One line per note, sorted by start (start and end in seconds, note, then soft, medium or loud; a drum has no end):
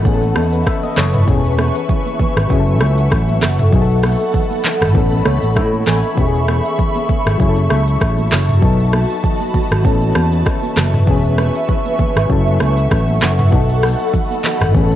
0.03 0.32 A1 loud
0.03 1.24 E3 medium
0.03 1.25 B3 medium
0.03 1.26 C#4 medium
0.03 2.48 B4 medium
0.03 3.69 C#6 medium
0.03 kick loud
0.03 shaker medium
0.08 0.14 G#4 medium
0.14 0.35 A4 medium
0.22 high conga medium
0.22 shaker soft
0.36 0.63 E2 medium
0.36 0.52 A4 medium
0.36 cross-stick medium
0.36 high conga medium
0.36 shaker soft
0.53 0.66 B4 medium
0.53 shaker loud
0.66 0.82 E5 medium
0.66 kick loud
0.66 cross-stick medium
0.66 shaker medium
0.83 0.96 D#5 medium
0.83 high conga medium
0.83 shaker medium
0.97 1.24 F#1 loud
0.97 1.13 C#5 medium
0.97 cross-stick loud
0.97 clap loud
0.97 high conga medium
0.97 low conga medium
0.97 shaker medium
1.14 1.43 B4 medium
1.14 mid tom loud
1.14 shaker medium
1.25 1.69 E1 loud
1.25 2.46 E3 medium
1.25 2.47 B3 medium
1.25 2.48 C#4 medium
1.25 3.70 E5 medium
1.25 kick loud
1.25 shaker medium
1.30 2.49 G#4 medium
1.45 shaker medium
1.58 cross-stick medium
1.58 high conga medium
1.58 shaker medium
1.75 shaker medium
1.89 kick medium
1.89 low conga medium
1.89 shaker medium
2.06 high conga medium
2.06 shaker medium
2.19 kick medium
2.19 high conga medium
2.19 low conga medium
2.19 shaker medium
2.36 2.48 G#1 loud
2.36 cross-stick medium
2.36 shaker medium
2.48 2.81 F#1 loud
2.48 3.69 F#3 medium
2.48 3.70 C#4 medium
2.48 3.71 E4 medium
2.48 6.14 A4 medium
2.48 kick loud
2.48 shaker medium
2.53 2.59 G#4 medium
2.59 3.75 A4 medium
2.67 high conga medium
2.67 shaker medium
2.81 3.08 C#2 medium
2.81 cross-stick medium
2.81 high conga medium
2.81 shaker soft
2.98 shaker loud
3.11 3.38 A1 medium
3.11 kick loud
3.11 cross-stick medium
3.11 shaker medium
3.28 high conga medium
3.28 shaker medium
3.42 3.69 F#1 medium
3.42 cross-stick medium
3.42 clap loud
3.42 high conga medium
3.42 low conga medium
3.42 shaker medium
3.59 mid tom medium
3.59 shaker medium
3.70 4.14 B1 loud
3.70 4.91 F#3 medium
3.70 4.92 B3 medium
3.70 4.93 D#4 medium
3.70 6.15 B5 medium
3.70 kick loud
3.70 shaker medium
3.75 3.81 G#4 medium
3.82 4.96 A4 medium
3.90 shaker medium
4.03 cross-stick medium
4.03 open hi-hat soft
4.03 high conga medium
4.03 shaker medium
4.20 shaker medium
4.34 kick medium
4.34 low conga medium
4.34 shaker medium
4.51 high conga medium
4.51 shaker medium
4.64 clap loud
4.64 high conga medium
4.64 low conga medium
4.64 shaker medium
4.81 4.93 G#1 medium
4.81 cross-stick medium
4.81 mid tom medium
4.81 shaker medium
4.93 5.22 A1 loud
4.93 6.14 E3 medium
4.93 6.15 B3 medium
4.93 6.15 C#4 medium
4.93 8.59 E5 medium
4.93 8.59 C#6 medium
4.93 kick loud
4.93 shaker medium
4.98 6.16 A4 medium
5.12 high conga medium
5.12 shaker soft
5.25 5.40 C#2 medium
5.25 5.54 C#5 medium
5.25 cross-stick medium
5.25 high conga medium
5.25 shaker soft
5.42 5.58 A1 medium
5.42 shaker loud
5.56 5.83 A2 loud
5.56 5.85 E5 medium
5.56 kick medium
5.56 cross-stick medium
5.56 shaker medium
5.73 high conga medium
5.73 shaker soft
5.86 6.02 A1 medium
5.86 6.15 G#5 medium
5.86 cross-stick medium
5.86 clap loud
5.86 high conga medium
5.86 low conga medium
5.86 shaker medium
6.04 shaker medium
6.15 6.59 E1 loud
6.15 7.36 E3 medium
6.15 7.37 B3 medium
6.15 7.38 C#4 medium
6.15 kick loud
6.15 shaker medium
6.20 6.26 G4 medium
6.26 7.41 G#4 medium
6.35 shaker medium
6.48 cross-stick medium
6.48 high conga medium
6.48 shaker soft
6.65 shaker medium
6.79 kick medium
6.79 low conga medium
6.79 shaker medium
6.96 high conga medium
6.96 shaker medium
7.09 kick medium
7.09 high conga medium
7.09 low conga medium
7.09 shaker soft
7.26 7.38 G#1 medium
7.26 cross-stick medium
7.26 shaker medium
7.37 7.67 F#1 loud
7.37 8.59 F#3 medium
7.37 8.60 C#4 medium
7.37 8.60 E4 medium
7.37 11.04 A5 medium
7.37 kick loud
7.37 shaker medium
7.42 7.48 G#4 medium
7.49 8.64 A4 medium
7.57 high conga medium
7.57 shaker soft
7.70 7.97 C#2 medium
7.70 cross-stick medium
7.70 high conga medium
7.70 shaker soft
7.87 shaker loud
8.01 8.28 A1 medium
8.01 kick medium
8.01 cross-stick medium
8.01 shaker medium
8.18 high conga medium
8.18 shaker soft
8.31 8.59 F#1 loud
8.31 cross-stick medium
8.31 clap medium
8.31 high conga medium
8.31 low conga medium
8.31 shaker medium
8.48 mid tom medium
8.48 shaker medium
8.60 9.04 B1 loud
8.60 9.81 F#3 medium
8.60 9.82 B3 medium
8.60 9.83 D#4 medium
8.60 kick loud
8.60 shaker medium
8.65 9.84 A4 medium
8.79 shaker medium
8.93 cross-stick medium
8.93 high conga medium
8.93 shaker soft
9.10 shaker medium
9.24 kick medium
9.24 low conga medium
9.24 shaker medium
9.41 high conga medium
9.41 shaker medium
9.54 kick medium
9.54 high conga medium
9.54 low conga medium
9.54 shaker medium
9.71 9.83 G#1 loud
9.71 cross-stick medium
9.71 shaker medium
9.82 10.12 A1 loud
9.82 11.04 E3 medium
9.82 11.04 B3 medium
9.82 11.05 C#4 medium
9.82 12.27 B4 medium
9.82 13.49 E5 medium
9.82 kick loud
9.82 shaker medium
9.87 11.06 A4 medium
10.02 high conga medium
10.02 shaker medium
10.15 10.42 E2 loud
10.15 cross-stick loud
10.15 high conga medium
10.15 shaker soft
10.32 shaker loud
10.46 kick loud
10.46 cross-stick medium
10.46 shaker medium
10.63 high conga medium
10.63 shaker soft
10.76 11.03 F#1 loud
10.76 cross-stick loud
10.76 clap loud
10.76 high conga medium
10.76 low conga medium
10.76 shaker medium
10.93 mid tom medium
10.93 shaker medium
11.05 11.49 E1 loud
11.05 12.26 E3 medium
11.05 12.27 B3 medium
11.05 12.28 C#4 medium
11.05 13.50 C#6 loud
11.05 kick loud
11.05 shaker medium
11.10 12.29 G#4 medium
11.24 shaker medium
11.38 cross-stick medium
11.38 high conga medium
11.38 shaker medium
11.55 shaker medium
11.68 kick medium
11.68 low conga medium
11.68 shaker medium
11.86 high conga medium
11.86 shaker medium
11.99 kick medium
11.99 high conga medium
11.99 low conga medium
11.99 shaker medium
12.16 12.28 G#1 medium
12.16 cross-stick medium
12.16 shaker medium
12.27 12.56 F#1 loud
12.27 13.48 F#3 medium
12.27 13.49 C#4 medium
12.27 13.50 E4 medium
12.27 14.96 A4 medium
12.27 14.72 F#5 medium
12.27 kick loud
12.27 shaker medium
12.32 13.51 A4 medium
12.47 high conga medium
12.47 shaker soft
12.60 12.87 C#2 loud
12.60 cross-stick medium
12.60 high conga medium
12.60 shaker soft
12.77 shaker loud
12.91 13.18 A1 loud
12.91 kick loud
12.91 cross-stick medium
12.91 shaker medium
13.08 high conga medium
13.08 shaker soft
13.21 13.48 F#1 medium
13.21 cross-stick medium
13.21 clap medium
13.21 high conga medium
13.21 low conga medium
13.21 shaker medium
13.38 mid tom loud
13.38 shaker medium
13.50 13.94 B1 loud
13.50 14.71 F#3 medium
13.50 14.72 B3 medium
13.50 14.73 D#4 medium
13.50 kick loud
13.50 shaker medium
13.55 14.73 A4 medium
13.69 shaker medium
13.82 cross-stick medium
13.82 open hi-hat medium
13.82 high conga medium
13.82 shaker soft
14.00 shaker medium
14.13 kick medium
14.13 low conga medium
14.13 shaker medium
14.30 high conga medium
14.30 shaker medium
14.44 clap loud
14.44 high conga medium
14.44 low conga medium
14.44 shaker medium
14.61 14.73 G#1 loud
14.61 cross-stick medium
14.61 mid tom medium
14.61 shaker medium
14.72 14.96 A1 loud
14.72 14.96 E3 medium
14.72 14.96 B3 medium
14.72 14.96 C#4 medium
14.72 kick loud
14.72 shaker medium
14.77 14.83 G#4 medium
14.84 14.96 A4 medium
14.91 high conga medium
14.91 shaker medium